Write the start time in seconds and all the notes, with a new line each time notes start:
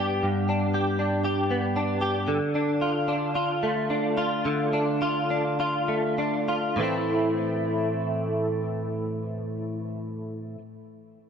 Already playing: G2 B3 D4 G4
0.23 G2
0.49 D4
0.74 G4
0.99 D4
1.24 G4
1.50 B3
1.76 D4
2.01 G4
2.28 D3
2.55 D4
2.81 F4
3.08 D4
3.35 F4
3.63 A3
3.90 D4
4.17 F4
4.45 D3
4.73 D4
5.02 F4
5.30 D4
5.60 F4
5.88 A3
6.18 D4
6.48 F4
6.76 A2 E3 A3
6.82 C4 E4